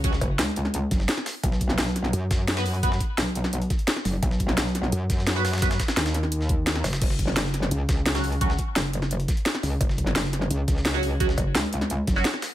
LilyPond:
<<
  \new Staff \with { instrumentName = "Synth stab" } { \time 4/4 \key b \mixolydian \tempo 4 = 172 <fis cis' fis'>16 r2. r8. | r2. r16 <b fis' b'>16 r8 | <b fis' b'>16 r2. r8. | r2. r16 <b fis' b'>16 r8 |
<b fis' b'>16 r2. r8. | r2. r16 <fis cis' fis'>16 r8 | <fis cis' fis'>16 r2. r8. | r2. r16 <fis cis' fis'>16 r8 |
<fis cis' fis'>16 r2 r8 <fis cis' fis'>16 r4 | }
  \new Staff \with { instrumentName = "Wobble bass" } { \clef bass \time 4/4 \key b \mixolydian cis,8 r2 fis,,8 r4 | r2 fis,2~ | fis,8 r2. fis,,8 | r2 fis,2~ |
fis,8 r8 dis,2~ dis,8 r8 | r2 cis,2~ | cis,8 r2. cis,8 | r2 cis,2~ |
cis,8 r2 fis,,8 r4 | }
  \new Staff \with { instrumentName = "Wobble bass" } { \clef bass \time 4/4 \key b \mixolydian r8 fis,,8 cis,4. r4. | b,,4 b,,4 r2 | r4 b,,4. r4. | b,,4 b,,4 r2 |
r2. r8 fis,,8 | fis,,4 fis,,4 r2 | r4 fis,,4. r4. | fis,,4 fis,,4 r2 |
r8 fis,,8 cis,4. r4. | }
  \new DrumStaff \with { instrumentName = "Drums" } \drummode { \time 4/4 <hh bd>16 sn16 <hh bd>8 <hh sn>8 hh16 sn16 hh8 <hh bd sn>16 sn16 <hh sn>16 sn16 <hh hho sn>8 | <hh bd>16 sn16 <hh bd>16 sn16 <hh sn>16 sn16 <hh sn>16 sn16 hh8 <hh bd sn>8 <hh sn>16 <hh sn>16 hho16 hh16 | <hh bd>16 sn16 <hh bd>8 <hh sn>8 hh16 sn16 hh16 hh16 <hh bd sn>16 hh16 <hh sn>16 sn16 <hh hho sn>8 | <hh bd>16 sn16 <hh bd>16 sn16 <hh sn>16 sn16 <hh sn>16 sn16 hh8 <hh bd sn>16 sn16 <hh sn>16 sn16 <hh hho sn>16 <hh sn>32 <hh sn>32 |
<hh bd sn>16 <hh sn>16 <hh bd sn>16 <hh sn>16 <hh sn>16 <hh sn>16 <hh sn>16 sn16 hh16 sn16 <hh bd>8 <hh sn>16 sn16 <hh hho sn>16 <hh sn>16 | <cymc hh bd>16 sn16 <hh bd>16 sn16 <hh sn>16 sn16 <hh sn>16 sn16 hh8 <hh bd sn>8 <hh sn>16 <hh sn>16 hho16 hh16 | <hh bd>16 sn16 <hh bd>8 <hh sn>8 hh16 sn16 hh16 hh16 <hh bd sn>16 hh16 <hh sn>16 sn16 <hh hho sn>8 | <hh bd>16 sn16 <hh bd>16 sn16 <hh sn>16 sn16 <hh sn>16 sn16 hh8 <hh bd sn>16 sn16 <hh sn>16 sn16 <hh hho>8 |
<hh bd>16 sn16 <hh bd>8 <hh sn>8 hh16 sn16 hh8 <hh bd sn>16 sn16 <hh sn>16 sn16 <hh hho sn>8 | }
>>